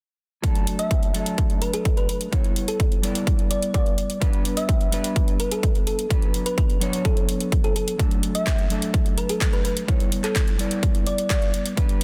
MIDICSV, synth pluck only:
0, 0, Header, 1, 2, 480
1, 0, Start_track
1, 0, Key_signature, 2, "major"
1, 0, Tempo, 472441
1, 443, Time_signature, 4, 2, 24, 8
1, 12230, End_track
2, 0, Start_track
2, 0, Title_t, "Synth pluck"
2, 0, Program_c, 0, 84
2, 803, Note_on_c, 0, 76, 88
2, 1475, Note_off_c, 0, 76, 0
2, 1642, Note_on_c, 0, 71, 87
2, 1738, Note_off_c, 0, 71, 0
2, 1763, Note_on_c, 0, 69, 84
2, 1887, Note_off_c, 0, 69, 0
2, 2002, Note_on_c, 0, 71, 85
2, 2079, Note_off_c, 0, 71, 0
2, 2123, Note_on_c, 0, 71, 73
2, 2200, Note_off_c, 0, 71, 0
2, 2724, Note_on_c, 0, 69, 90
2, 2848, Note_off_c, 0, 69, 0
2, 3563, Note_on_c, 0, 74, 88
2, 3687, Note_off_c, 0, 74, 0
2, 3803, Note_on_c, 0, 74, 87
2, 4331, Note_off_c, 0, 74, 0
2, 4643, Note_on_c, 0, 76, 88
2, 5315, Note_off_c, 0, 76, 0
2, 5483, Note_on_c, 0, 71, 88
2, 5579, Note_off_c, 0, 71, 0
2, 5604, Note_on_c, 0, 69, 83
2, 5728, Note_off_c, 0, 69, 0
2, 5964, Note_on_c, 0, 69, 86
2, 6087, Note_off_c, 0, 69, 0
2, 6562, Note_on_c, 0, 71, 87
2, 6639, Note_off_c, 0, 71, 0
2, 6682, Note_on_c, 0, 71, 74
2, 6759, Note_off_c, 0, 71, 0
2, 7163, Note_on_c, 0, 69, 88
2, 7287, Note_off_c, 0, 69, 0
2, 7763, Note_on_c, 0, 69, 87
2, 7840, Note_off_c, 0, 69, 0
2, 7883, Note_on_c, 0, 69, 72
2, 7960, Note_off_c, 0, 69, 0
2, 8483, Note_on_c, 0, 76, 89
2, 9155, Note_off_c, 0, 76, 0
2, 9324, Note_on_c, 0, 71, 89
2, 9419, Note_off_c, 0, 71, 0
2, 9444, Note_on_c, 0, 69, 84
2, 9568, Note_off_c, 0, 69, 0
2, 9683, Note_on_c, 0, 71, 86
2, 9760, Note_off_c, 0, 71, 0
2, 9803, Note_on_c, 0, 71, 72
2, 9880, Note_off_c, 0, 71, 0
2, 10403, Note_on_c, 0, 69, 89
2, 10527, Note_off_c, 0, 69, 0
2, 11244, Note_on_c, 0, 74, 87
2, 11368, Note_off_c, 0, 74, 0
2, 11483, Note_on_c, 0, 74, 87
2, 12011, Note_off_c, 0, 74, 0
2, 12230, End_track
0, 0, End_of_file